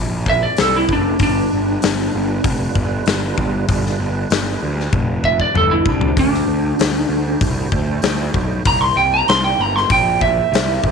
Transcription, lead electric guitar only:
0.30 E5
0.43 D5
0.61 A4
0.76 E4
0.93 D4
1.23 D4
5.25 E5
5.41 D5
5.57 A4
5.71 E4
5.88 D4
6.19 D4
8.67 A#5
8.81 C6
8.97 G5
9.14 A#5
9.29 C6
9.44 G5
9.61 A#5
9.76 C6
9.92 G5
10.22 E5

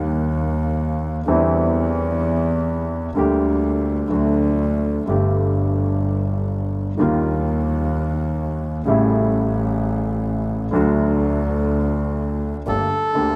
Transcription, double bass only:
Already playing: D#2
1.26 E2
3.15 D2
4.11 D2
5.08 G1
6.99 D#2
8.86 A1
10.74 D2
12.67 G1
13.16 D2

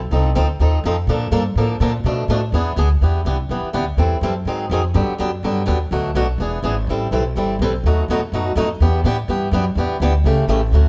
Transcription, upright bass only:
Already playing: B1
0.11 C2
0.35 D2
0.59 D#2
0.84 F2
1.07 A#2
1.31 G2
1.56 A2
1.80 A#2
2.04 B2
2.28 A2
2.52 E2
2.76 D2
3.01 E2
3.25 C2
3.49 B1
3.63 muted upright bass stroke
3.74 D2
3.97 E2
4.21 F#2
4.45 G#2
4.70 F2
4.94 G2
5.19 F#2
5.43 G2
5.67 D#2
5.91 D2
6.15 B1
6.38 E1
6.63 G#1
6.87 A1
7.11 B1
7.36 G1
7.59 B1
7.83 D#2
8.08 E2
8.32 F#2
8.55 F2
8.80 E2
9.04 A2
9.28 G2
9.51 F#2
9.75 E2
10.00 D2
10.24 C#2
10.48 A1
10.71 D2

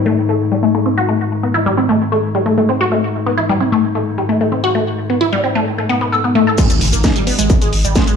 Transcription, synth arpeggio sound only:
0.06 A3
0.29 A3
0.52 G3
0.63 A3
0.75 A3
0.86 C4
0.98 F#4
1.09 A3
1.43 B3
1.54 E4
1.66 G3
1.77 C4
1.89 A3
2.12 A3
2.35 G3
2.46 A3
2.58 A3
2.69 C4
2.81 F#4
2.92 A3
3.26 B3
3.38 E4
3.49 G3
3.60 C4
3.72 A3
3.95 A3
4.18 G3
4.29 A3
4.41 A3
4.52 C4
4.64 F#4
4.75 A3
5.10 B3
5.21 E4
5.33 G3
5.44 C4
5.55 A3
5.78 A3
5.89 B3
6.01 B3
6.12 A4
6.24 B3
6.35 A3
6.47 A4
6.58 G#3
6.93 A#3
7.04 D#4
7.16 G3
7.27 B3
7.39 G#3
7.62 G#3
7.84 G3
7.96 G#3
8.07 G#3

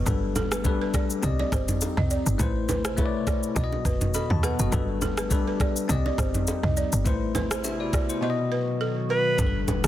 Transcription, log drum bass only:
0.06 G1
1.23 C2
1.52 G1
1.97 C2
2.26 G1
2.40 A1
3.56 B1
3.85 F#1
4.31 D#2
4.59 F#1
4.72 G1
5.89 C2
6.18 G1
6.63 C2
6.93 G1
7.06 A1
9.39 G1
9.84 G1

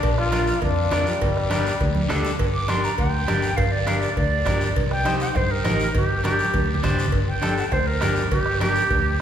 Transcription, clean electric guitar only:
0.31 D4 F4 A#4
0.91 D4 F4 A#4
1.50 D4 G4 A#4
2.09 D4 G4 A4
2.68 D4 G4 A#4
3.28 D4 G4 A#4
3.86 D4 G4 A#4
4.45 D4 G4 A#4
5.05 D#4 G4 C5
5.64 D#4 G4 A#4
6.24 D4 G4 A#4
6.83 D4 G4 C5
7.42 D4 G4 A4
8.01 D4 G4 A#4
8.61 D4 G4 A#4

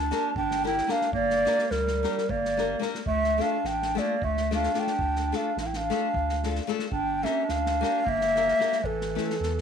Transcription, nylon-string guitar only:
0.11 A#3 D4 G4 A#4
0.64 A#3 D4 G4 A#4
0.87 A#3 D4 G4 A#4
1.45 A#3 D4 G4 A#4
2.03 A#3 D4 G4 A#4
2.57 A#3 D4 G4 A#4
2.79 A#3 D4 G4 A#4
3.38 A3 D4 F4 A4
3.95 A3 D4 F4 A4
4.51 A3 D4 F4 A4
4.74 A3 D4 F4 A4
5.32 A3 D4 F4 A4
5.90 A3 D4 F4 A4
6.44 A3 D4 F4 A4
6.67 A3 D4 F4 A4
7.23 A#3 D4 G4 A#4
7.81 A#3 D4 G4 A#4
8.36 A#3 D4 G4 A#4
8.59 A#3 D4 G4 A#4
9.15 A3 C#4 E4 A4

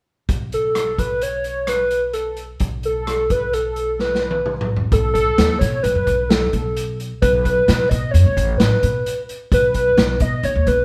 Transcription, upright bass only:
0.29 B1
2.61 B1
4.92 B1
5.38 D#2
5.61 B2
5.84 B1
5.95 F#2
6.07 B1
6.54 B1
7.22 B1
7.69 B2
7.91 B2
8.14 F#2
8.26 B1
8.37 A1
8.61 A1
8.83 B2
9.52 B1
9.97 B1
10.21 B2
10.43 B1
10.56 D#2
10.67 B1

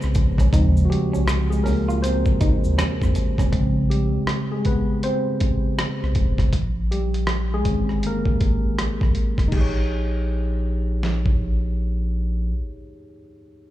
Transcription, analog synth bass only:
0.04 C2
0.17 A#1
0.54 D#2
1.16 C2
1.68 C#2
2.42 D#2
2.66 D#2
2.80 F2
3.03 F2
3.40 F1
3.54 A#1
4.17 C2
6.03 C2
6.17 F1
6.54 A#1
7.66 G1
8.42 G#1
8.65 G#1
8.79 A#1
9.02 A#1
9.39 F1
9.53 A#1

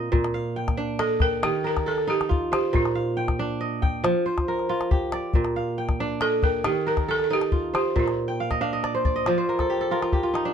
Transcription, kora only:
Already playing: A#2 C4 D#5 F5 G5
0.12 A#2
0.34 F5
0.56 G5
0.77 D4
1.00 D#5
1.21 G5
1.43 D#3
1.64 A#4
1.86 A4
2.07 D#4
2.29 F4
2.52 C5
2.73 A#2
2.95 F5
3.17 G5
3.39 D4
3.61 D#5
3.82 G5
4.04 F3
4.26 C5
4.48 A#4
4.69 F4
4.91 G4
5.13 D5
5.35 A#2
5.56 F5
5.78 G5
6.00 D4
6.22 D#5
6.44 G5
6.65 D#3
6.87 A#4
7.08 A4
7.30 D#4
7.52 F4
7.74 C5
7.96 A#2
8.28 G5
8.40 F5
8.51 D#5
8.61 D4 F5
8.73 D#5
8.84 D5
8.95 C5
9.05 D5
9.16 D#5
9.27 F3 D5
9.38 C5
9.49 A#4
9.60 A4
9.70 G4
9.81 A4
9.91 F4 A#4
10.02 F4
10.13 G4
10.23 F4
10.34 D#4
10.45 D4

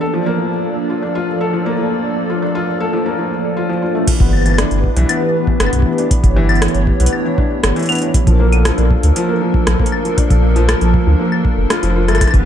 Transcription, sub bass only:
4.20 G1
4.71 G1
4.96 B1
5.60 G1
6.24 G1
6.75 G1
7.00 B1
7.64 G1
8.27 A#1
8.78 A#1
9.03 D2
9.67 A#1
10.30 A#1
10.81 A#1
11.07 D2
11.58 F1
11.83 F1
12.08 G1
12.34 G1

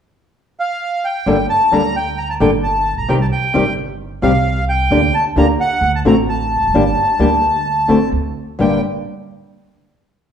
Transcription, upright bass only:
1.26 G1
1.72 D2
2.40 G1
2.92 A1
2.97 A#1
3.03 B1
3.09 C2
3.54 G1
4.22 C2
4.91 D2
5.36 D2
5.81 D2
6.05 A1
6.56 E1
6.62 F1
6.68 F#1
6.74 G1
7.19 D2
7.89 G1
8.12 D2
8.59 G1

